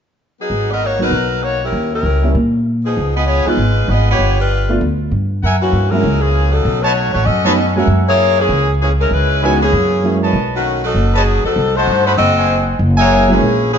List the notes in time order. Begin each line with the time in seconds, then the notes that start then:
0.41 F#3 B3 D#4 G#4
0.50 G#1
0.72 B3 F#4 A#4 D#5
0.84 A#3 D#4 F#4 C#5
0.99 F#3 A#3 B3 D#4 A#4 B4
1.11 B1
1.43 A#3 D#4 F#4 C#5
1.64 G3 C#4 E4 A#4
1.72 D#2
1.94 G3 C#4 E4 A#4
2.03 C#2
2.22 G3 A#3 C#4 E4
2.35 A#2
2.84 F3 B3 D#4 G#4
2.97 C#2
3.16 B3 F4 G#4 D#5
3.26 B3 F4 G#4 C#5
3.46 G#3 B3 D#4 F4 B4, muted upright bass stroke
3.57 G#1
3.88 G#1 B3 F4 G#4 D#5
4.10 B3 F4 G4 C#5
4.19 G1
4.40 G3 D4 F4 B4
4.69 A3 B3 D4 F4
4.81 D2
5.11 G2
5.43 F#2 A#4 E5 F#5 G#5
5.61 E3 A#3 C#4 F#4
5.73 G2
5.91 F#3 G#3 A#3 C#4 E4 A#4
6.04 C#2
6.21 E3 A#3 C#4 G#4
6.51 F#3 C#4 D#4 A4
6.65 B1
6.82 A3 D#4 F#4 B4 C#5 D#5 A5
7.14 A1 A3 D#4 F#4 C#5
7.25 F#2 C#4 F#4 A4 D#5
7.45 F#3 A3 B3 C#4 D#4 B4 C#5 D#5 A5
7.76 F#3 G#3 A#3 C#4 F#4 A#4 E5 F#5 G#5
7.87 F#2
8.08 A#3 E4 G#4 C#5
8.39 E3 A#3 C#4 G#4
8.49 C#2
8.82 E3 A#3 C#4 G#4
9.00 G#3 C#4 E4 A#4
9.11 C#2 G#3 C#4 E4 B4
9.42 D#3 E3 G#3 B3 C#4 D#4 F#4 B4 C#5 E5 G#5
9.62 E3 A#3 C#4 G#4
9.73 F#2
10.03 F#3 G#3 A#3 C#4 E4
10.23 B4 C#5 D#5 A5
10.33 B1
10.55 D#3 A3 C#4 F#4
10.84 F#3 C#4 D#4 A4
10.94 F#1
11.15 F#3 C#4 D#4 G#4 B4 C#5 D#5 A5
11.44 F#3 C4 D#4 A4, muted upright bass stroke
11.56 C2
11.75 A3 D#4 F#4 C5 D#5 F#5 A5
11.87 G2
12.06 A3 D#4 F#4 C5 D#5 F#5 B5
12.17 F#1 C4 F#4 A4 D#5
12.37 C5 D#5 F#5 G#5
12.79 F#1
12.97 A#3 E4 G#4 A#4 C#5 E5 F#5 G#5
13.28 F#3 G#3 A#3 C#4 E4
13.32 E3 C#4 G#4
13.41 A#1
13.73 E3 A#3 C#4 G#4